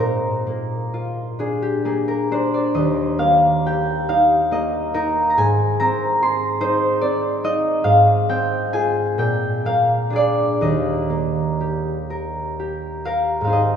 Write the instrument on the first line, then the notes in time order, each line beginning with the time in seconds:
harp
Already playing: F4 F5
0.00 A#2 A#4
0.47 A#3
0.94 F4
1.39 D4 G#4
1.62 G4
1.85 A#3 G#4
2.08 A#4
2.31 D4 C5
2.54 D5
2.74 D#2 D#5
3.18 A#3 F5
3.66 G4 G5
4.09 D#4 F5
4.51 A#3 D#5
4.94 D#4 A#4
5.30 A#5
5.37 G#2 G#5
5.80 C4 A#5
6.22 G#4 C6
6.61 D#4 C5
7.01 C4 D5
7.44 D#4 D#5
7.84 G#2 F5
8.29 C4 G5
8.73 F4 G#4 G#5
9.18 A#2 G5
9.65 A#3 F5
10.10 D4 G#4
10.16 D5
10.61 D#2 D#5
11.10 A#3
11.61 G4
12.10 A#4
12.59 G4
13.05 A#4 F5
13.41 G#2 C4 F5
13.47 D#4 G#4
13.53 D#5